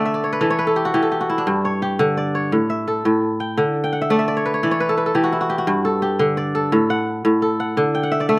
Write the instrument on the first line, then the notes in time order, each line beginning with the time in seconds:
kora
Already playing: D3 A3 D5 F#5 G5
0.06 E5
0.14 D5
0.24 C#5
0.33 B4
0.41 E3 A4
0.50 C#5
0.59 B4
0.67 A4
0.76 G4
0.85 F#4
0.94 E3 G4
1.02 A4
1.12 G4
1.21 F#4
1.30 E4
1.38 D4
1.47 G2
1.65 C#5
1.82 G4
1.99 D3
2.17 D5
2.35 C#5
2.52 A2
2.70 E5
2.88 A4
3.05 A2
3.40 G5
3.58 D3
3.84 G5
3.93 F#5
4.01 E5
4.10 A3 D5
4.19 E5
4.28 D5
4.37 C#5
4.45 B4
4.54 C#5
4.63 E3 D5
4.71 C#5
4.80 B4
4.89 A4
4.97 B4
5.06 A4
5.15 E3 G4
5.24 F#4
5.33 E4
5.41 F#4
5.50 G4
5.58 F#4
5.67 G2
5.85 A4
6.02 G4
6.19 D3
6.37 D5
6.55 A4
6.72 A2
6.90 F#5
7.25 A2
7.42 A4
7.60 F#5
7.77 D3
7.95 G5
8.03 F#5
8.12 E5
8.20 D5
8.29 A3 E5